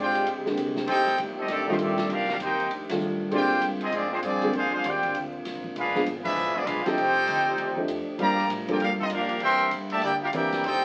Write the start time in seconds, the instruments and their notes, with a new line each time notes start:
Already playing: upright bass G#2, trombone section D3 G#3 C4 D4 G4
0.00 trombone section G#3, trumpet section F4 C5 D5 G5
0.15 ride
0.27 upright bass F2, ride
0.37 upright bass D2
0.46 upright bass A#1, grand piano D3 G#3 A#3 C4 G4, snare
0.57 upright bass C2, hi-hat pedal, ride
0.76 snare
0.87 upright bass F1, trombone section D#3 A3 C4 D#4 G4 D5, trumpet section D#4 A4 C5 G5, ride
1.07 snare
1.18 upright bass G1, hi-hat pedal, ride
1.36 trombone section A3 C4 D#4, trumpet section C4 G4 A4 D#5
1.48 upright bass A1, trombone section D#3 A3 D4, trumpet section C4 G4 A4 D5, snare, ride
1.66 trombone section D#3 A3 C4, grand piano D#3 G3 A3 D4 F4, trumpet section A3 D#4 G4 C5, kick
1.78 upright bass A#1, trombone section D#3 A3 D4, trumpet section C4 G4 A4, hi-hat pedal, ride
1.82 trumpet section D5
1.98 snare, ride
2.09 upright bass C2, trombone section A#3 C4 F4 G4, trumpet section D4 G4 A#4 F5, ride
2.28 trumpet section D4 G4 A#4 F5, trombone section F4, snare
2.39 upright bass D#2, trombone section A#3 D#4 G4, trumpet section C5, hi-hat pedal, ride
2.43 trumpet section D#4 A#4 G5
2.60 ride
2.70 upright bass F2, trombone section A3 D4, ride
2.89 grand piano D#3 G3 A3 D4 F4, snare, ride
3.00 upright bass A2, hi-hat pedal
3.31 upright bass A#2, grand piano D3 G#3 A#3 C4 G4, trombone section D3 G#3 A#3 C4 D4 F4 G4, trumpet section F4 C5 D5 G5, ride
3.61 upright bass G2, hi-hat pedal, ride
3.81 trumpet section C4 F4 G#4 D#5, trombone section D#4, ride
3.91 upright bass G#2, trombone section F3 G#3 D4, trumpet section C4 F4 G#4 D5, ride
4.10 trombone section F3 G#3 C4, trumpet section G#3 D4 F4 C5
4.21 upright bass G2, trombone section F3 D4 G#4, trumpet section C4 F4 G#4 D5, hi-hat pedal, ride
4.42 grand piano D3 G#3 A#3 C4 G4, ride
4.52 upright bass F2, trombone section G#3 D4 F4, ride
4.56 trumpet section D4 G#4 C5 F5
4.72 trombone section G#3 D4 F4, trumpet section D4 G#4 C5 F5
4.84 upright bass D#2, trombone section G#3 D4 G4, trumpet section F4 C5 D5 G5, hi-hat pedal, ride
5.03 kick, ride
5.15 upright bass D2, ride
5.45 upright bass C2, snare, hi-hat pedal, ride
5.55 upright bass A#1
5.64 upright bass G#1, kick
5.75 upright bass B1, trombone section F3 G#3 B3 D4 F4, trumpet section D4 G#4 B4 F5, ride
5.95 grand piano F3 G#3 B3 D4 G#4, snare
6.06 upright bass G#1, hi-hat pedal, ride
6.23 trombone section F3 G#3 E4, trumpet section D4 G#4 B4 E5, kick, crash
6.36 upright bass A#1
6.53 trombone section F3 G#3 D4, trumpet section B3 F4 G#4 D5, muted upright bass stroke, kick
6.64 upright bass B1, trombone section G#3 D4 F4, trumpet section D4 G#4 B4 F5, hi-hat pedal, ride
6.83 grand piano F3 A3 D4 D#4, trombone section C4 D#4 G4, trumpet section D#4 A4 C5 G5, muted upright bass stroke, snare, ride
6.87 grand piano G4
6.96 upright bass C2, trombone section F3 A3 G4 D5, ride
7.27 upright bass D2, hi-hat pedal, ride
7.58 upright bass D#2, ride
7.76 grand piano F3 A3 D4 D#4 G4
7.88 upright bass F2, hi-hat pedal, ride
8.08 muted upright bass stroke
8.18 upright bass G2, trombone section D3 F3 G3 A#3 F4 A#4, grand piano F3 G3 A#3 D4 G4, trumpet section G4 D5 F5 A#5, ride
8.38 snare
8.50 upright bass A2, hi-hat pedal, ride
8.68 grand piano F3 G3 A#3 D4 A4, trombone section A#3 D4 G4, trumpet section F4 A#4 D5 G5, ride
8.80 upright bass G2, trombone section A#3 D4 F4, trumpet section D4 G4 A#4 F5, ride
8.99 trumpet section C4 F4 A4 D#5, trombone section D#4, kick
9.10 upright bass F2, trombone section A#3 D4 F4, trumpet section D4 G4 A#4 F5, hi-hat pedal, ride
9.29 ride
9.40 upright bass E2, trombone section D3 E3 G3 A#3 C4 E4, trumpet section A#4 E5 G5 C6, ride
9.71 upright bass G2, hi-hat pedal, ride
9.90 trombone section A#2 E3 A3, trumpet section G4 D5 E5 A5, ride
10.02 upright bass D2, trombone section A#3 E4 G4, trumpet section E4 A#4 D5 G5, ride
10.22 trumpet section D4 G4 A#4 F5, trombone section F4
10.33 upright bass E2, grand piano E3 A#3 C4 D4 A#4, trombone section A#3 E4 G4, trumpet section E4 A#4 D5 G5, hi-hat pedal, ride
10.52 snare, ride
10.63 upright bass F2, trombone section D#3 A3 C4 D#4 G4 D5, trumpet section D#4 A4 C5 G5, ride